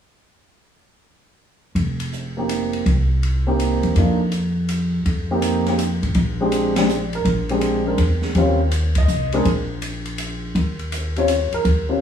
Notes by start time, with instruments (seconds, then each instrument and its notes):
1.75 upright bass F1, kick, ride
2.00 ride
2.13 hi-hat pedal
2.37 grand piano A#3 C4 D#4 G4
2.49 hi-hat pedal, ride
2.73 ride
2.86 upright bass C2, kick, ride
3.23 ride
3.47 grand piano A#3 C4 D#4 G4
3.60 hi-hat pedal, ride
3.83 upright bass E2, ride
3.96 upright bass F2, grand piano A#3 D4 D#4 F4, kick, ride
4.32 hi-hat pedal, ride
4.69 hi-hat pedal, ride
5.05 upright bass F2, kick, ride
5.31 grand piano A#3 C4 D#4 G4
5.42 hi-hat pedal, ride
5.66 grand piano A#3 C4 D#4 G4, snare, ride
5.79 hi-hat pedal, ride
6.03 upright bass A1, ride
6.14 upright bass A#1, kick, ride
6.40 grand piano G#3 C4 D4 G4
6.52 hi-hat pedal, ride
6.76 grand piano G#3 C4 D4 G4 D5, snare, ride
6.89 hi-hat pedal
7.13 grand piano A#4, ride
7.25 upright bass A#1, kick, ride
7.49 grand piano G#3 C4 D4 G4, ride
7.61 hi-hat pedal, ride
7.85 grand piano G#3 C4 D4 A#4
7.97 upright bass E2, ride
8.22 snare
8.35 upright bass D#2, grand piano G3 C4 C#4 F4, kick, ride
8.71 hi-hat pedal, ride
8.95 grand piano D#5, kick, ride
9.08 upright bass C2, hi-hat pedal
9.32 grand piano G#3 C4 D4 G#4 A#4, ride
9.45 upright bass A#1, kick, ride
9.82 hi-hat pedal, ride
10.05 ride
10.18 hi-hat pedal, ride
10.55 upright bass D#2, kick, ride
10.79 ride
10.92 hi-hat pedal, ride
11.16 grand piano G3 C4 C#4 F4 C#5, ride
11.28 hi-hat pedal, ride
11.52 grand piano A#4, muted upright bass stroke, ride
11.65 upright bass D#2, kick, ride
11.89 grand piano G3 C4 C#4 F4